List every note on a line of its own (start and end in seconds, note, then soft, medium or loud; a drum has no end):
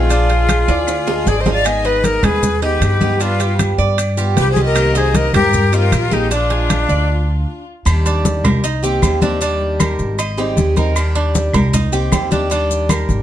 0.00 0.62 A#1 medium
0.00 1.29 F4 loud
0.00 1.27 G#4 medium
0.09 0.86 F3 medium
0.09 0.87 G#3 medium
0.09 0.29 D4 medium
0.09 0.87 D4 medium
0.09 0.87 F4 medium
0.09 high conga soft
0.09 high timbale medium
0.09 maracas medium
0.29 0.67 G#4 medium
0.29 high conga soft
0.29 high timbale medium
0.49 high conga medium
0.49 high timbale loud
0.49 claves medium
0.49 maracas medium
0.68 1.22 D2 medium
0.68 1.06 D5 medium
0.68 high timbale medium
0.68 maracas soft
0.87 muted steel-string acoustic guitar stroke medium
0.87 high conga soft
0.87 high timbale medium
0.87 claves medium
0.87 maracas medium
1.07 1.26 G#3 medium
1.07 1.26 D4 medium
1.07 1.26 F4 medium
1.07 1.45 G#4 medium
1.07 high conga soft
1.07 low timbale medium
1.26 2.17 G#1 medium
1.26 1.45 F3 medium
1.26 1.45 G#3 soft
1.26 1.45 D4 medium
1.26 1.44 F4 medium
1.26 1.42 G#4 medium
1.26 1.40 D5 medium
1.26 high conga medium
1.26 low timbale medium
1.26 maracas medium
1.40 1.53 C5 medium
1.40 1.53 D#5 medium
1.45 1.64 G#3 soft
1.45 1.65 D4 medium
1.45 1.64 F4 medium
1.45 1.84 G#4 medium
1.45 high conga medium
1.45 low timbale medium
1.45 maracas soft
1.53 1.67 D5 loud
1.53 1.65 F5 medium
1.64 2.42 D#3 medium
1.64 2.42 G#3 medium
1.64 2.43 B3 medium
1.64 2.42 D#4 medium
1.64 2.42 G#4 medium
1.64 1.87 D#5 loud
1.64 1.85 G#5 medium
1.64 high conga soft
1.64 high timbale medium
1.64 claves medium
1.64 maracas medium
1.85 2.22 D#4 medium
1.85 2.06 B4 loud
1.85 2.03 D#5 medium
1.85 high conga soft
2.04 2.26 A#4 loud
2.04 2.23 D#5 medium
2.04 high conga medium
2.04 high timbale medium
2.04 maracas medium
2.23 2.78 D#2 medium
2.23 2.63 G#4 loud
2.23 2.60 B4 medium
2.23 2.61 B4 medium
2.23 low conga medium
2.23 high timbale loud
2.23 claves medium
2.23 maracas soft
2.43 muted steel-string acoustic guitar stroke medium
2.43 high conga soft
2.43 low conga medium
2.43 maracas medium
2.62 2.80 G#3 medium
2.62 2.81 B3 medium
2.62 2.81 D#4 medium
2.62 3.23 G4 loud
2.62 2.81 G#4 medium
2.62 3.16 B4 medium
2.62 3.00 D#5 medium
2.62 high conga soft
2.62 high timbale medium
2.81 3.73 G2 medium
2.81 3.00 G#3 soft
2.81 3.01 B3 medium
2.81 3.00 D#4 medium
2.81 2.99 G#4 medium
2.81 high conga medium
2.81 high timbale loud
2.81 low timbale medium
2.81 claves medium
2.81 maracas medium
3.01 3.20 G#3 medium
3.01 3.19 B3 medium
3.01 3.20 D#4 medium
3.01 3.20 G4 medium
3.01 3.20 G#4 medium
3.01 high conga medium
3.01 maracas soft
3.20 3.98 G3 medium
3.20 3.97 B3 medium
3.20 3.39 D4 medium
3.20 3.60 F4 medium
3.20 3.98 F4 medium
3.20 3.60 B4 medium
3.20 high conga soft
3.20 high timbale medium
3.20 maracas medium
3.40 3.78 G4 medium
3.40 high conga soft
3.40 high timbale medium
3.40 maracas medium
3.59 high conga medium
3.59 high timbale medium
3.59 claves medium
3.59 maracas medium
3.78 4.33 G2 medium
3.78 4.16 D5 medium
3.78 maracas soft
3.98 muted steel-string acoustic guitar stroke medium
3.98 high conga soft
3.98 high timbale medium
3.98 claves medium
3.98 maracas medium
4.17 4.37 B3 medium
4.17 4.36 F4 medium
4.17 4.55 G4 medium
4.17 high conga soft
4.17 maracas medium
4.36 5.28 C2 medium
4.36 4.56 G3 medium
4.36 4.55 F4 medium
4.36 4.50 G4 loud
4.36 4.49 B4 medium
4.36 high conga medium
4.36 high timbale medium
4.36 low timbale medium
4.36 maracas medium
4.50 4.63 G#4 loud
4.50 4.62 C5 medium
4.56 4.76 B3 medium
4.56 4.75 F4 medium
4.56 4.94 G4 medium
4.56 high conga medium
4.56 maracas soft
4.63 4.99 A#4 loud
4.63 4.93 D#5 medium
4.75 5.52 C3 medium
4.75 5.53 D#3 medium
4.75 5.54 A#3 medium
4.75 5.53 C4 medium
4.75 5.53 G4 medium
4.75 high conga soft
4.75 high timbale loud
4.75 claves medium
4.75 maracas medium
4.95 5.33 D#4 medium
4.95 5.17 G#4 loud
4.95 5.15 C5 medium
4.95 high conga soft
4.95 maracas medium
5.14 5.34 A#4 loud
5.14 5.34 D#5 medium
5.14 high conga loud
5.14 high timbale medium
5.14 maracas medium
5.33 5.88 G2 medium
5.33 5.76 G4 medium
5.33 5.72 A#4 medium
5.33 5.71 A#4 medium
5.33 low conga medium
5.33 high timbale loud
5.33 claves medium
5.33 maracas soft
5.53 muted steel-string acoustic guitar stroke medium
5.53 high conga soft
5.53 low conga medium
5.53 maracas medium
5.72 5.91 D#3 medium
5.72 5.91 A#3 medium
5.72 5.92 C4 medium
5.72 6.15 F4 medium
5.72 5.91 G4 medium
5.72 6.12 A#4 medium
5.72 6.11 D#5 medium
5.72 high conga soft
5.72 high timbale medium
5.72 maracas medium
5.92 6.83 A#1 medium
5.92 6.11 D#3 soft
5.92 6.11 A#3 medium
5.92 6.11 C4 medium
5.92 6.10 G4 medium
5.92 high conga medium
5.92 high timbale medium
5.92 claves medium
5.92 maracas medium
6.11 6.30 D#3 medium
6.11 6.31 A#3 medium
6.11 6.31 C4 medium
6.11 6.32 D#4 medium
6.11 6.30 G4 medium
6.11 6.31 G4 medium
6.11 6.30 G#4 medium
6.11 high conga medium
6.11 maracas soft
6.31 7.08 F3 medium
6.31 7.08 G#3 medium
6.31 6.50 D4 medium
6.31 7.64 D4 medium
6.31 7.09 D4 medium
6.31 7.63 F4 medium
6.31 7.09 F4 medium
6.31 high conga soft
6.31 high timbale medium
6.31 maracas medium
6.50 6.88 G#4 medium
6.50 high conga soft
6.50 high timbale medium
6.70 high conga medium
6.70 high timbale medium
6.70 claves medium
6.70 maracas medium
6.89 7.43 D2 medium
6.89 7.08 D5 medium
6.89 maracas soft
7.85 8.40 D#2 medium
7.85 8.63 D#3 medium
7.85 8.64 G3 medium
7.85 8.64 D4 medium
7.85 8.64 G4 medium
7.85 high conga soft
7.85 low agogo loud
7.85 claves medium
7.85 maracas medium
8.06 8.43 D4 medium
8.06 high conga soft
8.06 low agogo medium
8.06 maracas medium
8.25 high conga loud
8.25 maracas medium
8.44 8.98 C2 medium
8.44 8.63 A#4 medium
8.44 low conga medium
8.44 low agogo loud
8.44 claves medium
8.44 maracas soft
8.64 8.83 D#4 medium
8.64 muted steel-string acoustic guitar stroke medium
8.64 high conga soft
8.64 low agogo medium
8.64 maracas medium
8.83 9.01 D#3 medium
8.83 9.02 A#3 medium
8.83 9.02 C4 medium
8.83 9.02 G4 medium
8.83 9.21 G4 medium
8.83 high conga soft
8.83 maracas medium
9.02 9.93 D#2 medium
9.02 9.21 D#3 medium
9.02 9.21 A#3 medium
9.02 9.21 C4 medium
9.02 9.20 G4 medium
9.02 high conga medium
9.02 low timbale medium
9.02 low agogo loud
9.02 claves medium
9.02 maracas medium
9.21 9.39 D#3 medium
9.21 9.41 A#3 medium
9.21 9.41 C4 medium
9.21 9.40 D4 medium
9.21 9.40 G4 medium
9.21 high conga medium
9.21 maracas soft
9.41 10.17 D#3 medium
9.41 10.19 G3 medium
9.41 9.79 D4 medium
9.41 10.19 D4 medium
9.41 10.19 G4 loud
9.41 high conga soft
9.41 low agogo medium
9.41 maracas medium
9.61 high conga soft
9.80 10.18 A#4 medium
9.80 high conga loud
9.80 low agogo loud
9.80 claves medium
9.80 maracas medium
9.99 10.53 G#1 medium
9.99 maracas soft
10.18 10.38 D#5 medium
10.18 muted steel-string acoustic guitar stroke medium
10.18 high conga soft
10.18 low agogo loud
10.18 claves medium
10.18 maracas medium
10.37 10.56 G3 medium
10.37 10.56 C4 medium
10.37 10.57 D#4 medium
10.37 10.76 G4 medium
10.37 10.56 G#4 medium
10.37 high conga soft
10.37 low agogo medium
10.57 11.48 D#2 medium
10.57 10.76 G3 medium
10.57 10.76 C4 medium
10.57 10.76 D#4 medium
10.57 10.75 G#4 medium
10.57 high conga medium
10.57 maracas medium
10.76 10.95 G3 medium
10.76 10.96 C4 medium
10.76 10.96 D#4 medium
10.76 10.95 G#4 medium
10.76 11.15 A#4 medium
10.76 high conga medium
10.76 low agogo medium
10.76 maracas soft
10.95 11.72 D#3 medium
10.95 11.73 G3 medium
10.95 11.73 D4 medium
10.95 11.74 G4 medium
10.95 high conga soft
10.95 low agogo loud
10.95 claves medium
10.95 maracas medium
11.15 11.53 D4 medium
11.15 high conga soft
11.15 low agogo medium
11.35 high conga loud
11.35 maracas medium
11.53 12.08 C2 medium
11.53 11.73 A#4 medium
11.53 low conga medium
11.53 low agogo loud
11.53 claves medium
11.53 maracas soft
11.73 11.92 D#4 medium
11.73 muted steel-string acoustic guitar stroke medium
11.73 high conga soft
11.73 low conga medium
11.73 low agogo medium
11.73 maracas medium
11.92 12.11 D#3 medium
11.92 12.11 A#3 medium
11.92 12.12 C4 medium
11.92 12.11 G4 medium
11.92 12.30 G4 medium
11.92 high conga soft
11.92 maracas medium
12.12 13.03 D#2 medium
12.12 12.31 D#3 medium
12.12 12.31 A#3 medium
12.12 12.30 C4 medium
12.12 12.30 G4 medium
12.12 high conga medium
12.12 low timbale medium
12.12 low agogo loud
12.12 claves medium
12.12 maracas medium
12.31 12.48 D#3 medium
12.31 12.50 A#3 medium
12.31 12.50 C4 medium
12.31 12.50 D4 medium
12.31 12.50 G4 medium
12.31 high conga medium
12.31 maracas soft
12.50 13.23 D#3 medium
12.50 13.23 G3 medium
12.50 12.89 D4 medium
12.50 13.23 D4 medium
12.50 13.23 G4 medium
12.50 high conga soft
12.50 low agogo medium
12.50 maracas medium
12.70 high conga soft
12.70 maracas medium
12.89 13.23 A#4 medium
12.89 high conga loud
12.89 low agogo loud
12.89 claves medium
12.89 maracas medium
13.09 13.23 G#1 medium
13.09 high conga medium
13.09 maracas soft